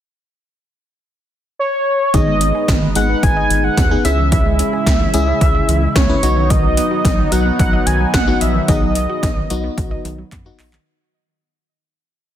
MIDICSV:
0, 0, Header, 1, 7, 480
1, 0, Start_track
1, 0, Tempo, 545455
1, 1883, Time_signature, 4, 2, 24, 8
1, 10872, End_track
2, 0, Start_track
2, 0, Title_t, "Analog synth lead"
2, 0, Program_c, 0, 81
2, 1402, Note_on_c, 0, 73, 100
2, 1883, Note_on_c, 0, 75, 122
2, 1896, Note_off_c, 0, 73, 0
2, 2363, Note_off_c, 0, 75, 0
2, 2604, Note_on_c, 0, 78, 105
2, 2843, Note_on_c, 0, 80, 116
2, 2856, Note_off_c, 0, 78, 0
2, 3202, Note_on_c, 0, 78, 110
2, 3215, Note_off_c, 0, 80, 0
2, 3556, Note_off_c, 0, 78, 0
2, 3562, Note_on_c, 0, 76, 102
2, 3785, Note_off_c, 0, 76, 0
2, 3801, Note_on_c, 0, 76, 117
2, 5241, Note_on_c, 0, 73, 100
2, 5254, Note_off_c, 0, 76, 0
2, 5721, Note_on_c, 0, 75, 109
2, 5734, Note_off_c, 0, 73, 0
2, 6440, Note_on_c, 0, 78, 96
2, 6453, Note_off_c, 0, 75, 0
2, 6673, Note_off_c, 0, 78, 0
2, 6678, Note_on_c, 0, 78, 104
2, 6919, Note_on_c, 0, 80, 101
2, 6932, Note_off_c, 0, 78, 0
2, 7155, Note_off_c, 0, 80, 0
2, 7160, Note_on_c, 0, 78, 103
2, 7400, Note_on_c, 0, 76, 91
2, 7413, Note_off_c, 0, 78, 0
2, 7635, Note_off_c, 0, 76, 0
2, 7640, Note_on_c, 0, 75, 105
2, 9046, Note_off_c, 0, 75, 0
2, 10872, End_track
3, 0, Start_track
3, 0, Title_t, "FM electric piano"
3, 0, Program_c, 1, 5
3, 1882, Note_on_c, 1, 59, 70
3, 1882, Note_on_c, 1, 63, 63
3, 1882, Note_on_c, 1, 68, 79
3, 2420, Note_off_c, 1, 59, 0
3, 2420, Note_off_c, 1, 63, 0
3, 2420, Note_off_c, 1, 68, 0
3, 2604, Note_on_c, 1, 59, 74
3, 2604, Note_on_c, 1, 63, 67
3, 2604, Note_on_c, 1, 68, 83
3, 3231, Note_off_c, 1, 59, 0
3, 3231, Note_off_c, 1, 63, 0
3, 3231, Note_off_c, 1, 68, 0
3, 3443, Note_on_c, 1, 63, 65
3, 3443, Note_on_c, 1, 68, 79
3, 3444, Note_on_c, 1, 59, 72
3, 3552, Note_off_c, 1, 68, 0
3, 3563, Note_off_c, 1, 59, 0
3, 3563, Note_off_c, 1, 63, 0
3, 3563, Note_on_c, 1, 61, 76
3, 3563, Note_on_c, 1, 64, 73
3, 3563, Note_on_c, 1, 68, 82
3, 4331, Note_off_c, 1, 61, 0
3, 4331, Note_off_c, 1, 64, 0
3, 4331, Note_off_c, 1, 68, 0
3, 4522, Note_on_c, 1, 61, 87
3, 4522, Note_on_c, 1, 64, 81
3, 4522, Note_on_c, 1, 68, 98
3, 5150, Note_off_c, 1, 61, 0
3, 5150, Note_off_c, 1, 64, 0
3, 5150, Note_off_c, 1, 68, 0
3, 5363, Note_on_c, 1, 61, 75
3, 5363, Note_on_c, 1, 64, 69
3, 5363, Note_on_c, 1, 71, 83
3, 5482, Note_on_c, 1, 59, 77
3, 5483, Note_off_c, 1, 61, 0
3, 5483, Note_off_c, 1, 64, 0
3, 5483, Note_off_c, 1, 71, 0
3, 5483, Note_on_c, 1, 63, 72
3, 5483, Note_on_c, 1, 66, 87
3, 6250, Note_off_c, 1, 59, 0
3, 6251, Note_off_c, 1, 63, 0
3, 6251, Note_off_c, 1, 66, 0
3, 6441, Note_on_c, 1, 59, 75
3, 6441, Note_on_c, 1, 63, 69
3, 6441, Note_on_c, 1, 66, 81
3, 7069, Note_off_c, 1, 59, 0
3, 7069, Note_off_c, 1, 63, 0
3, 7069, Note_off_c, 1, 66, 0
3, 7282, Note_on_c, 1, 59, 75
3, 7282, Note_on_c, 1, 66, 82
3, 7283, Note_on_c, 1, 63, 69
3, 7551, Note_off_c, 1, 59, 0
3, 7551, Note_off_c, 1, 66, 0
3, 7552, Note_off_c, 1, 63, 0
3, 7642, Note_on_c, 1, 63, 68
3, 7643, Note_on_c, 1, 59, 74
3, 7643, Note_on_c, 1, 68, 79
3, 8180, Note_off_c, 1, 59, 0
3, 8180, Note_off_c, 1, 63, 0
3, 8180, Note_off_c, 1, 68, 0
3, 8364, Note_on_c, 1, 59, 91
3, 8364, Note_on_c, 1, 63, 82
3, 8364, Note_on_c, 1, 66, 95
3, 8991, Note_off_c, 1, 59, 0
3, 8991, Note_off_c, 1, 63, 0
3, 8991, Note_off_c, 1, 66, 0
3, 9204, Note_on_c, 1, 59, 90
3, 9204, Note_on_c, 1, 63, 84
3, 9204, Note_on_c, 1, 66, 102
3, 9472, Note_off_c, 1, 59, 0
3, 9472, Note_off_c, 1, 63, 0
3, 9472, Note_off_c, 1, 66, 0
3, 10872, End_track
4, 0, Start_track
4, 0, Title_t, "Analog synth pad"
4, 0, Program_c, 2, 89
4, 1883, Note_on_c, 2, 56, 81
4, 1883, Note_on_c, 2, 63, 77
4, 1883, Note_on_c, 2, 71, 89
4, 3546, Note_off_c, 2, 63, 0
4, 3546, Note_off_c, 2, 71, 0
4, 3560, Note_on_c, 2, 49, 78
4, 3560, Note_on_c, 2, 64, 85
4, 5448, Note_off_c, 2, 56, 0
4, 5462, Note_off_c, 2, 49, 0
4, 5462, Note_off_c, 2, 64, 0
4, 5481, Note_on_c, 2, 54, 83
4, 5481, Note_on_c, 2, 63, 89
4, 5482, Note_on_c, 2, 59, 76
4, 9527, Note_off_c, 2, 54, 0
4, 9527, Note_off_c, 2, 59, 0
4, 9527, Note_off_c, 2, 63, 0
4, 10872, End_track
5, 0, Start_track
5, 0, Title_t, "Synth pluck"
5, 0, Program_c, 3, 84
5, 1883, Note_on_c, 3, 51, 95
5, 1986, Note_off_c, 3, 51, 0
5, 2003, Note_on_c, 3, 56, 73
5, 2106, Note_off_c, 3, 56, 0
5, 2124, Note_on_c, 3, 59, 85
5, 2226, Note_off_c, 3, 59, 0
5, 2242, Note_on_c, 3, 68, 80
5, 2345, Note_off_c, 3, 68, 0
5, 2363, Note_on_c, 3, 75, 89
5, 2465, Note_off_c, 3, 75, 0
5, 2482, Note_on_c, 3, 51, 73
5, 2585, Note_off_c, 3, 51, 0
5, 2602, Note_on_c, 3, 56, 76
5, 2705, Note_off_c, 3, 56, 0
5, 2722, Note_on_c, 3, 59, 74
5, 2825, Note_off_c, 3, 59, 0
5, 2962, Note_on_c, 3, 75, 81
5, 3065, Note_off_c, 3, 75, 0
5, 3082, Note_on_c, 3, 51, 80
5, 3185, Note_off_c, 3, 51, 0
5, 3203, Note_on_c, 3, 56, 77
5, 3305, Note_off_c, 3, 56, 0
5, 3322, Note_on_c, 3, 59, 88
5, 3425, Note_off_c, 3, 59, 0
5, 3442, Note_on_c, 3, 68, 79
5, 3545, Note_off_c, 3, 68, 0
5, 3563, Note_on_c, 3, 76, 87
5, 3666, Note_off_c, 3, 76, 0
5, 3683, Note_on_c, 3, 52, 73
5, 3786, Note_off_c, 3, 52, 0
5, 3804, Note_on_c, 3, 52, 97
5, 3906, Note_off_c, 3, 52, 0
5, 3923, Note_on_c, 3, 56, 75
5, 4026, Note_off_c, 3, 56, 0
5, 4043, Note_on_c, 3, 61, 83
5, 4146, Note_off_c, 3, 61, 0
5, 4163, Note_on_c, 3, 68, 78
5, 4266, Note_off_c, 3, 68, 0
5, 4283, Note_on_c, 3, 76, 93
5, 4386, Note_off_c, 3, 76, 0
5, 4403, Note_on_c, 3, 52, 74
5, 4506, Note_off_c, 3, 52, 0
5, 4523, Note_on_c, 3, 56, 80
5, 4626, Note_off_c, 3, 56, 0
5, 4642, Note_on_c, 3, 61, 78
5, 4745, Note_off_c, 3, 61, 0
5, 4882, Note_on_c, 3, 76, 83
5, 4985, Note_off_c, 3, 76, 0
5, 5003, Note_on_c, 3, 52, 79
5, 5105, Note_off_c, 3, 52, 0
5, 5123, Note_on_c, 3, 56, 77
5, 5225, Note_off_c, 3, 56, 0
5, 5243, Note_on_c, 3, 61, 92
5, 5346, Note_off_c, 3, 61, 0
5, 5362, Note_on_c, 3, 68, 81
5, 5465, Note_off_c, 3, 68, 0
5, 5482, Note_on_c, 3, 75, 91
5, 5585, Note_off_c, 3, 75, 0
5, 5602, Note_on_c, 3, 51, 72
5, 5705, Note_off_c, 3, 51, 0
5, 5722, Note_on_c, 3, 51, 94
5, 5825, Note_off_c, 3, 51, 0
5, 5842, Note_on_c, 3, 54, 75
5, 5945, Note_off_c, 3, 54, 0
5, 5961, Note_on_c, 3, 59, 84
5, 6065, Note_off_c, 3, 59, 0
5, 6081, Note_on_c, 3, 66, 80
5, 6185, Note_off_c, 3, 66, 0
5, 6201, Note_on_c, 3, 75, 91
5, 6304, Note_off_c, 3, 75, 0
5, 6323, Note_on_c, 3, 51, 71
5, 6425, Note_off_c, 3, 51, 0
5, 6442, Note_on_c, 3, 54, 79
5, 6545, Note_off_c, 3, 54, 0
5, 6562, Note_on_c, 3, 59, 75
5, 6665, Note_off_c, 3, 59, 0
5, 6802, Note_on_c, 3, 75, 81
5, 6905, Note_off_c, 3, 75, 0
5, 6922, Note_on_c, 3, 51, 83
5, 7025, Note_off_c, 3, 51, 0
5, 7042, Note_on_c, 3, 54, 75
5, 7145, Note_off_c, 3, 54, 0
5, 7162, Note_on_c, 3, 59, 86
5, 7265, Note_off_c, 3, 59, 0
5, 7282, Note_on_c, 3, 66, 78
5, 7385, Note_off_c, 3, 66, 0
5, 7402, Note_on_c, 3, 75, 91
5, 7505, Note_off_c, 3, 75, 0
5, 7521, Note_on_c, 3, 51, 73
5, 7624, Note_off_c, 3, 51, 0
5, 7642, Note_on_c, 3, 51, 95
5, 7745, Note_off_c, 3, 51, 0
5, 7761, Note_on_c, 3, 54, 78
5, 7865, Note_off_c, 3, 54, 0
5, 7881, Note_on_c, 3, 59, 83
5, 7985, Note_off_c, 3, 59, 0
5, 8002, Note_on_c, 3, 66, 82
5, 8105, Note_off_c, 3, 66, 0
5, 8121, Note_on_c, 3, 75, 89
5, 8224, Note_off_c, 3, 75, 0
5, 8242, Note_on_c, 3, 51, 74
5, 8345, Note_off_c, 3, 51, 0
5, 8361, Note_on_c, 3, 54, 77
5, 8464, Note_off_c, 3, 54, 0
5, 8481, Note_on_c, 3, 59, 80
5, 8584, Note_off_c, 3, 59, 0
5, 8721, Note_on_c, 3, 75, 81
5, 8825, Note_off_c, 3, 75, 0
5, 8841, Note_on_c, 3, 51, 82
5, 8944, Note_off_c, 3, 51, 0
5, 8961, Note_on_c, 3, 54, 73
5, 9065, Note_off_c, 3, 54, 0
5, 9082, Note_on_c, 3, 59, 90
5, 9185, Note_off_c, 3, 59, 0
5, 9201, Note_on_c, 3, 66, 81
5, 9304, Note_off_c, 3, 66, 0
5, 9321, Note_on_c, 3, 75, 91
5, 9425, Note_off_c, 3, 75, 0
5, 9442, Note_on_c, 3, 51, 73
5, 9545, Note_off_c, 3, 51, 0
5, 10872, End_track
6, 0, Start_track
6, 0, Title_t, "Analog synth bass"
6, 0, Program_c, 4, 38
6, 1883, Note_on_c, 4, 32, 110
6, 2219, Note_off_c, 4, 32, 0
6, 2362, Note_on_c, 4, 32, 109
6, 2530, Note_off_c, 4, 32, 0
6, 2602, Note_on_c, 4, 32, 99
6, 2770, Note_off_c, 4, 32, 0
6, 2843, Note_on_c, 4, 32, 105
6, 3011, Note_off_c, 4, 32, 0
6, 3083, Note_on_c, 4, 32, 95
6, 3251, Note_off_c, 4, 32, 0
6, 3321, Note_on_c, 4, 39, 91
6, 3490, Note_off_c, 4, 39, 0
6, 3564, Note_on_c, 4, 37, 106
6, 4067, Note_off_c, 4, 37, 0
6, 4281, Note_on_c, 4, 37, 109
6, 4450, Note_off_c, 4, 37, 0
6, 4523, Note_on_c, 4, 37, 104
6, 4691, Note_off_c, 4, 37, 0
6, 4763, Note_on_c, 4, 37, 105
6, 4931, Note_off_c, 4, 37, 0
6, 5001, Note_on_c, 4, 37, 101
6, 5170, Note_off_c, 4, 37, 0
6, 5241, Note_on_c, 4, 37, 95
6, 5410, Note_off_c, 4, 37, 0
6, 5482, Note_on_c, 4, 35, 101
6, 5986, Note_off_c, 4, 35, 0
6, 6201, Note_on_c, 4, 35, 106
6, 6370, Note_off_c, 4, 35, 0
6, 6442, Note_on_c, 4, 35, 102
6, 6610, Note_off_c, 4, 35, 0
6, 6683, Note_on_c, 4, 35, 99
6, 6851, Note_off_c, 4, 35, 0
6, 6922, Note_on_c, 4, 35, 103
6, 7091, Note_off_c, 4, 35, 0
6, 7161, Note_on_c, 4, 35, 99
6, 7330, Note_off_c, 4, 35, 0
6, 7403, Note_on_c, 4, 34, 90
6, 7571, Note_off_c, 4, 34, 0
6, 7642, Note_on_c, 4, 35, 106
6, 7978, Note_off_c, 4, 35, 0
6, 8122, Note_on_c, 4, 35, 111
6, 8290, Note_off_c, 4, 35, 0
6, 8364, Note_on_c, 4, 35, 98
6, 8531, Note_off_c, 4, 35, 0
6, 8603, Note_on_c, 4, 35, 102
6, 8771, Note_off_c, 4, 35, 0
6, 8843, Note_on_c, 4, 35, 100
6, 9011, Note_off_c, 4, 35, 0
6, 9082, Note_on_c, 4, 42, 93
6, 9250, Note_off_c, 4, 42, 0
6, 9324, Note_on_c, 4, 34, 89
6, 9492, Note_off_c, 4, 34, 0
6, 10872, End_track
7, 0, Start_track
7, 0, Title_t, "Drums"
7, 1882, Note_on_c, 9, 36, 118
7, 1882, Note_on_c, 9, 42, 69
7, 1970, Note_off_c, 9, 36, 0
7, 1970, Note_off_c, 9, 42, 0
7, 2120, Note_on_c, 9, 42, 74
7, 2208, Note_off_c, 9, 42, 0
7, 2361, Note_on_c, 9, 36, 124
7, 2364, Note_on_c, 9, 38, 102
7, 2364, Note_on_c, 9, 42, 82
7, 2449, Note_off_c, 9, 36, 0
7, 2452, Note_off_c, 9, 38, 0
7, 2452, Note_off_c, 9, 42, 0
7, 2600, Note_on_c, 9, 42, 72
7, 2688, Note_off_c, 9, 42, 0
7, 2843, Note_on_c, 9, 36, 116
7, 2844, Note_on_c, 9, 42, 65
7, 2931, Note_off_c, 9, 36, 0
7, 2932, Note_off_c, 9, 42, 0
7, 3084, Note_on_c, 9, 42, 64
7, 3172, Note_off_c, 9, 42, 0
7, 3321, Note_on_c, 9, 36, 107
7, 3322, Note_on_c, 9, 38, 114
7, 3323, Note_on_c, 9, 42, 73
7, 3409, Note_off_c, 9, 36, 0
7, 3410, Note_off_c, 9, 38, 0
7, 3411, Note_off_c, 9, 42, 0
7, 3563, Note_on_c, 9, 42, 69
7, 3651, Note_off_c, 9, 42, 0
7, 3802, Note_on_c, 9, 36, 117
7, 3802, Note_on_c, 9, 42, 69
7, 3890, Note_off_c, 9, 36, 0
7, 3890, Note_off_c, 9, 42, 0
7, 4041, Note_on_c, 9, 42, 73
7, 4129, Note_off_c, 9, 42, 0
7, 4282, Note_on_c, 9, 36, 118
7, 4285, Note_on_c, 9, 38, 104
7, 4285, Note_on_c, 9, 42, 83
7, 4370, Note_off_c, 9, 36, 0
7, 4373, Note_off_c, 9, 38, 0
7, 4373, Note_off_c, 9, 42, 0
7, 4520, Note_on_c, 9, 42, 71
7, 4608, Note_off_c, 9, 42, 0
7, 4763, Note_on_c, 9, 36, 118
7, 4764, Note_on_c, 9, 42, 68
7, 4851, Note_off_c, 9, 36, 0
7, 4852, Note_off_c, 9, 42, 0
7, 5005, Note_on_c, 9, 42, 65
7, 5093, Note_off_c, 9, 42, 0
7, 5241, Note_on_c, 9, 36, 110
7, 5242, Note_on_c, 9, 38, 113
7, 5243, Note_on_c, 9, 42, 77
7, 5329, Note_off_c, 9, 36, 0
7, 5330, Note_off_c, 9, 38, 0
7, 5331, Note_off_c, 9, 42, 0
7, 5482, Note_on_c, 9, 42, 71
7, 5570, Note_off_c, 9, 42, 0
7, 5723, Note_on_c, 9, 36, 117
7, 5723, Note_on_c, 9, 42, 71
7, 5811, Note_off_c, 9, 36, 0
7, 5811, Note_off_c, 9, 42, 0
7, 5961, Note_on_c, 9, 42, 78
7, 6049, Note_off_c, 9, 42, 0
7, 6202, Note_on_c, 9, 36, 124
7, 6205, Note_on_c, 9, 38, 104
7, 6205, Note_on_c, 9, 42, 83
7, 6290, Note_off_c, 9, 36, 0
7, 6293, Note_off_c, 9, 38, 0
7, 6293, Note_off_c, 9, 42, 0
7, 6441, Note_on_c, 9, 42, 75
7, 6529, Note_off_c, 9, 42, 0
7, 6683, Note_on_c, 9, 36, 120
7, 6684, Note_on_c, 9, 42, 64
7, 6771, Note_off_c, 9, 36, 0
7, 6772, Note_off_c, 9, 42, 0
7, 6923, Note_on_c, 9, 42, 66
7, 7011, Note_off_c, 9, 42, 0
7, 7161, Note_on_c, 9, 36, 108
7, 7161, Note_on_c, 9, 38, 117
7, 7162, Note_on_c, 9, 42, 75
7, 7249, Note_off_c, 9, 36, 0
7, 7249, Note_off_c, 9, 38, 0
7, 7250, Note_off_c, 9, 42, 0
7, 7402, Note_on_c, 9, 42, 72
7, 7490, Note_off_c, 9, 42, 0
7, 7642, Note_on_c, 9, 36, 118
7, 7642, Note_on_c, 9, 42, 70
7, 7730, Note_off_c, 9, 36, 0
7, 7730, Note_off_c, 9, 42, 0
7, 7880, Note_on_c, 9, 42, 77
7, 7968, Note_off_c, 9, 42, 0
7, 8122, Note_on_c, 9, 36, 123
7, 8125, Note_on_c, 9, 38, 103
7, 8125, Note_on_c, 9, 42, 82
7, 8210, Note_off_c, 9, 36, 0
7, 8213, Note_off_c, 9, 38, 0
7, 8213, Note_off_c, 9, 42, 0
7, 8362, Note_on_c, 9, 42, 75
7, 8450, Note_off_c, 9, 42, 0
7, 8603, Note_on_c, 9, 36, 122
7, 8605, Note_on_c, 9, 42, 67
7, 8691, Note_off_c, 9, 36, 0
7, 8693, Note_off_c, 9, 42, 0
7, 8845, Note_on_c, 9, 42, 65
7, 8933, Note_off_c, 9, 42, 0
7, 9082, Note_on_c, 9, 36, 108
7, 9083, Note_on_c, 9, 39, 57
7, 9084, Note_on_c, 9, 42, 77
7, 9170, Note_off_c, 9, 36, 0
7, 9171, Note_off_c, 9, 39, 0
7, 9172, Note_off_c, 9, 42, 0
7, 9323, Note_on_c, 9, 39, 92
7, 9323, Note_on_c, 9, 46, 71
7, 9411, Note_off_c, 9, 39, 0
7, 9411, Note_off_c, 9, 46, 0
7, 9443, Note_on_c, 9, 39, 94
7, 9531, Note_off_c, 9, 39, 0
7, 10872, End_track
0, 0, End_of_file